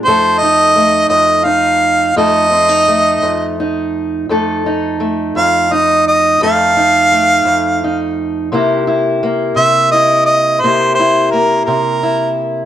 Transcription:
<<
  \new Staff \with { instrumentName = "Harmonica" } { \time 12/8 \key f \mixolydian \tempo 4. = 57 c''8 ees''4 ees''8 f''4 ees''2 r4 | r4. f''8 ees''8 ees''8 f''2~ f''8 r8 | r4. e''8 ees''8 ees''8 c''8 c''8 bes'8 bes'4 r8 | }
  \new Staff \with { instrumentName = "Steel-string acoustic guitar" } { \time 12/8 \key f \mixolydian << { <a ees' a'>8 ees'8 a4 ees'4 <a ees' a'>8 c'16 ees'16 a4 ees'4 | <a ees' a'>8 ees'8 a4 ees'4 <a ees' a'>8 ees'8 a4 ees'4 | <bes e' g'>8 e'8 bes4 e'4 <bes e' g'>8 e'8 bes4 e'4 | } \\ { f,4. f,4. f,4. f,4. | f,4. f,4. f,4. f,4. | c4. c4. c4. c4. | } >> }
>>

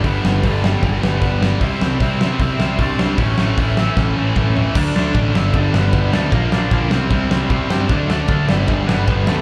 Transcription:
<<
  \new Staff \with { instrumentName = "Overdriven electric guitar" } { \time 4/4 \key g \lydian \tempo 4 = 153 <b b'>4 <a a'>8 <g g'>8 <b b'>4. r8 | <e' e''>2 <e' e''>4 <d' d''>4 | <cis' cis''>4 <e' e''>8 <e' e''>8 <cis' cis''>4. r8 | <d' d''>8 <d' d''>4 <e' e''>8 <d' d''>8 <b b'>4 <a a'>8 |
<bes bes'>8 <d' d''>4 r2 r8 | <d' d''>8 <d' d''>4 <e' e''>8 <d' d''>8 <b b'>4 <a a'>8 | }
  \new Staff \with { instrumentName = "Distorted electric guitar" } { \clef bass \time 4/4 \key g \lydian <g, d g b d'>8 <g, d g b d'>8 <g, d g b d'>8 <g, d g b d'>8 <g, d g b d'>8 <g, d g b d'>8 <g, d g b d'>8 <g, d g b d'>8 | <c g c' e'>8 <c g c' e'>8 <c g c' e'>8 <c g c' e'>8 <c g c' e'>8 <c g c' e'>8 <c g c' e'>8 <c g c' e'>8 | <a, e a cis' e'>8 <a, e a cis' e'>8 <a, e a cis' e'>8 <a, e a cis' e'>8 <a, e a cis' e'>8 <a, e a cis' e'>8 <a, e a cis' e'>8 <a, e a cis' e'>8 | <d fis a d'>8 <d fis a d'>8 <d fis a d'>8 <g, d g b d'>8 <g, d g b d'>8 <g, d g b d'>8 <g, d g b d'>8 <g, d g b d'>8 |
<bes, d f bes d'>8 <bes, d f bes d'>8 <bes, d f bes d'>8 <c g c' e'>8 <c g c' e'>8 <c g c' e'>8 <c g c' e'>8 <c g c' e'>8 | <d fis a d'>8 <d fis a d'>8 <d fis a d'>8 <g, d g b d'>8 <g, d g b d'>8 <g, d g b d'>8 <g, d g b d'>8 <g, d g b d'>8 | }
  \new Staff \with { instrumentName = "Distorted electric guitar" } { \clef bass \time 4/4 \key g \lydian <g, d g>8 <g, d g>8 <g, d g>8 <g, d g>8 <g, d g>8 <g, d g>8 <g, d g>8 <g, d g>8 | <c g c'>8 <c g c'>8 <c g c'>8 <c g c'>8 <c g c'>8 <c g c'>8 <c g c'>8 <c g c'>8 | <a, e a>8 <a, e a>8 <a, e a>8 <a, e a>8 <a, e a>8 <a, e a>8 <a, e a>8 <a, e a>8 | <d a d'>8 <d a d'>8 <d a d'>8 <g, d g>8 <g, d g>8 <g, d g>8 <g, d g>8 <g, d g>8 |
<bes, f bes>8 <bes, f bes>8 <bes, f bes>8 <c g c'>8 <c g c'>8 <c g c'>8 <c g c'>8 <c g c'>8 | <d a d'>8 <d a d'>8 <d a d'>8 <g, d g>8 <g, d g>8 <g, d g>8 <g, d g>8 <g, d g>8 | }
  \new Staff \with { instrumentName = "Picked electric bass" } { \clef bass \time 4/4 \key g \lydian g,,8 g,,8 g,,4 g,,8 g,,8 g,,4 | c,8 c,8 c,4 c,8 c,8 c,8 c,8 | a,,8 a,,8 a,,4 a,,8 a,,8 a,,4 | d,8 d,8 a,,8 g,,8 g,,8 g,,8 g,,8 d,8 |
bes,,8 bes,,8 bes,,8 c,8 c,8 c,8 c,8 g,8 | d,8 d,8 d,8 g,,8 g,,8 g,,8 g,,8 d,8 | }
  \new DrumStaff \with { instrumentName = "Drums" } \drummode { \time 4/4 <hho bd>8 sn8 <hho bd>8 sn8 <hho bd>8 sn8 <hho bd>8 sn8 | <hho bd>8 sn8 <hho bd>8 sn8 <hho bd>8 sn8 <hho bd>8 sn8 | <hho bd>8 sn8 <hho bd>8 sn8 <bd sn>4 <bd toml>8 tomfh8 | <cymc bd>8 sn8 <bd cymr>8 sn8 <bd cymr>8 sn8 <bd cymr>8 sn8 |
<bd cymr>8 sn8 <bd cymr>8 sn8 <bd cymr>8 sn8 <bd cymr>8 sn8 | <bd cymr>8 sn8 <bd cymr>8 sn8 <bd cymr>8 sn8 <bd cymr>8 sn8 | }
>>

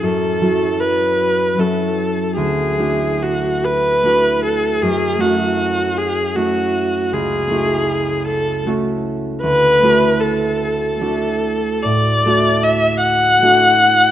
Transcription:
<<
  \new Staff \with { instrumentName = "Viola" } { \time 12/8 \key d \lydian \tempo 4. = 52 a'4 b'4 a'4 gis'4 fis'8 b'4 a'8 | gis'8 fis'4 gis'8 fis'4 gis'4. a'8 r4 | b'4 a'2 d''4 e''8 fis''4. | }
  \new Staff \with { instrumentName = "Harp" } { \time 12/8 \key d \lydian <fis, fis cis' e' fis'>8 <fis cis' e' fis'>4. <fis cis' e' fis'>4 d,8 <a d' e' fis'>4. <a d' e' fis'>4 | fis,8 <a cis' e' fis'>4. <a cis' e' fis'>4 cis,8 <a cis' e' fis'>4. <a cis' e' fis'>4 | d,8 <a d' e' fis'>4. <a d' e' fis'>4 a,8 <a d' e' fis'>4. <a d' e' fis'>4 | }
>>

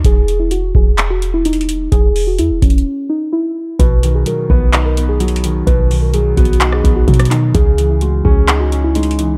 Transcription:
<<
  \new Staff \with { instrumentName = "Synth keys" } { \time 4/4 \key b \major \tempo 4 = 128 gis'8. e'16 fis'8 gis'8. fis'8 e'16 dis'4 | gis'8. fis'16 e'8 cis'4 dis'8 e'4 | b'8. gis'16 ais'8 b'8. ais'8 gis'16 fis'4 | b'8. ais'16 gis'8 fis'8. gis'8 fis'16 fis'8 dis'8 |
gis'8. e'16 fis'8 gis'8. fis'8 e'16 dis'4 | }
  \new Staff \with { instrumentName = "Grand piano" } { \clef bass \time 4/4 \key b \major r1 | r1 | b,8 dis8 fis8 b8 dis'8 b8 fis8 dis8 | b,8 dis8 fis8 b8 dis'8 b8 fis8 dis8 |
cis8 e8 gis8 cis'8 dis'8 cis'8 gis8 e8 | }
  \new Staff \with { instrumentName = "808-style bass" } { \clef bass \time 4/4 \key b \major e,,4. e,,2~ e,,8 | e,,4 e,16 e,,16 e,,8 r2 | b,,4 r8 b,,2~ b,,8 | b,,4. b,,4 b,,8 b,4 |
cis,4. cis,2~ cis,8 | }
  \new DrumStaff \with { instrumentName = "Drums" } \drummode { \time 4/4 <hh bd>8 hh8 hh8 bd8 <hc hh>8 hh8 \tuplet 3/2 { hh16 hh16 hh16 hh16 r16 r16 } | <hh bd>8 hho8 \tuplet 3/2 { hh16 r16 r16 <hh bd>16 hh16 hh16 } r4 r4 | <hh bd>8 hh8 hh8 bd8 <hc hh>8 hh8 \tuplet 3/2 { hh16 hh16 hh16 hh16 r16 r16 } | <hh bd>8 hho8 \tuplet 3/2 { hh16 r16 r16 <hh bd>16 hh16 hh16 } <hc hh>16 ss16 <hh bd>8 <hh bd>32 hh32 <hh ss>32 hh32 <hc hh>8 |
<hh bd>8 hh8 hh8 bd8 <hc hh>8 hh8 \tuplet 3/2 { hh16 hh16 hh16 hh16 r16 r16 } | }
>>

